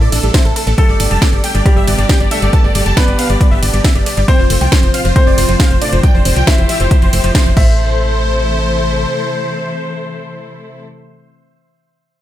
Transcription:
Already playing: C3 E3 A3 D4 E4 A4 E5
0.01 A2 A3 D5
0.12 A1 D4 A4, open hi-hat, ride
0.23 A1 G3 A4, closed hi-hat
0.34 E4 C5, kick, snare, closed hi-hat
0.45 A1 A4, closed hi-hat
0.56 A4, open hi-hat, ride
0.67 A1 A3 A4, closed hi-hat
0.78 B2 D3 G3 A3 G4 A4 A5, kick, closed hi-hat
0.89 G1 G3 D5
1.00 G1 D4 D5, open hi-hat, ride
1.11 F1 G3 A5, closed hi-hat
1.22 B3 D5, kick, snare, closed hi-hat
1.33 G1 G3 D5, closed hi-hat
1.43 G3 G5, open hi-hat, ride
1.55 G1 G3 D5, closed hi-hat
1.66 G3 D4 G4 D5, kick, closed hi-hat
1.76 G1 G3 E5
1.87 G1 B3 D5, open hi-hat, ride
1.98 G1 G3 D5, closed hi-hat
2.09 G3 G5, kick, snare, closed hi-hat
2.20 G1 G3 D5, closed hi-hat
2.31 A3 D4 A4 E5, open hi-hat, ride
2.42 G1 G3 D5, closed hi-hat
2.53 B3 A5, kick, closed hi-hat
2.64 G1 G3 D5
2.75 G1 G3 D5, open hi-hat, ride
2.86 F1 G3 A5, closed hi-hat
2.97 B3 D4 B4 D5, kick, snare, closed hi-hat
3.08 G1 G3 D5, closed hi-hat
3.19 B3 F5, open hi-hat, ride
3.30 G1 G3 D5, closed hi-hat
3.41 G3 D5, kick, closed hi-hat
3.51 G1 G3 E5
3.62 G1 D4 D5, open hi-hat, ride
3.73 G1 G3 D5, closed hi-hat
3.84 B3 E5, kick, snare, closed hi-hat
3.95 G1 G3 D5, closed hi-hat
4.06 G3 D5, open hi-hat, ride
4.17 G1 G3 D5, closed hi-hat
4.28 A2 C3 F3 C4 F4 C5 G5, kick, closed hi-hat
4.39 F1 F3 C5
4.50 F1 A3 C5, open hi-hat, ride
4.61 C2 F3 G5, closed hi-hat
4.72 F3 C5, kick, snare, closed hi-hat
4.83 F1 F3 C5, closed hi-hat
4.94 C4 F5, open hi-hat, ride
5.05 F1 F3 C5, closed hi-hat
5.16 A3 C4 C5, kick, closed hi-hat
5.27 F1 F3 D5
5.38 F1 F3 C5, open hi-hat, ride
5.49 F1 F3 C5, closed hi-hat
5.60 C4 F5, kick, snare, closed hi-hat
5.71 F1 F3 C5, closed hi-hat
5.82 A3 D4 D5, open hi-hat, ride
5.93 F1 F3 C5, closed hi-hat
6.03 F3 G4 G5, kick, closed hi-hat
6.15 F1 F3 C5
6.25 F1 C4 C5, open hi-hat, ride
6.36 C2 F3 G5, closed hi-hat
6.47 A3 E4 C5 E5, kick, snare, closed hi-hat
6.58 F1 F3 C5, closed hi-hat
6.69 F3 E5, open hi-hat, ride
6.80 F1 F3 C5, closed hi-hat
6.91 C4 C5, kick, closed hi-hat
7.02 F1 F3 C5, closed hi-hat
7.13 F1 A3 C5, open hi-hat, ride
7.24 F1 F3 C5, closed hi-hat
7.35 F3 C5, kick, snare, closed hi-hat
7.46 F1 F3 C5, closed hi-hat
7.57 A1 C3 E3 A3 E4 A4 C5 E5, kick, crash

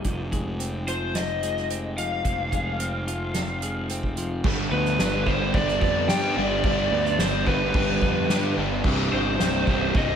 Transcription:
0.04 F1 F2, kick, closed hi-hat
0.32 G#3, kick, closed hi-hat
0.60 C4, closed hi-hat
0.88 F4 C5, closed hi-hat
1.15 C4 D#5, snare, closed hi-hat
1.43 G#3, closed hi-hat
1.57 snare
1.70 C4, closed hi-hat
1.98 F3 F5, closed hi-hat
2.25 F1 F2, kick, closed hi-hat
2.52 G#3, kick, closed hi-hat
2.80 C4, closed hi-hat
3.08 F4, closed hi-hat
3.34 C4, snare, closed hi-hat
3.62 G#3, closed hi-hat
3.89 C4, closed hi-hat
4.03 kick
4.17 F3, closed hi-hat
4.44 G1 G2 D3 G3, kick, crash
4.71 D2 B3 B4, ride
4.85 snare
4.99 G1 G2 D3 G3 D4, snare, ride
5.26 G1 G2 D3 G3 B3 C5, kick, ride
5.54 G1 G2 D3 G3 D5, kick, ride
5.68 snare
5.81 F2 B3 D5, kick, ride
6.08 G2 D3 G3 G4 G5, snare, ride
6.36 G1 G2 D3 G3 D4 D5, ride
6.63 G1 G2 D3 G3 D5, kick, ride
6.91 D2 B3, ride
7.05 snare
7.18 G1 G2 D3 G3 D4 C5, snare, ride
7.46 G1 G2 D3 G3 B3 B4, kick, ride
7.74 G1 G2 D3 G3, kick, ride
8.02 F2 B3, kick, ride
8.29 G2 D3 G3 G4, snare, ride
8.56 G1 G2 D3 G3 D4, ride
8.84 C1 C2 G2 C3, kick, crash
9.12 G1 C3 C5, ride
9.39 C1 C2 G2 C3 G3, snare, ride
9.67 C1 C2 G2 C3, kick, ride
9.94 C1 C2 G2 C3 D#5, kick, ride

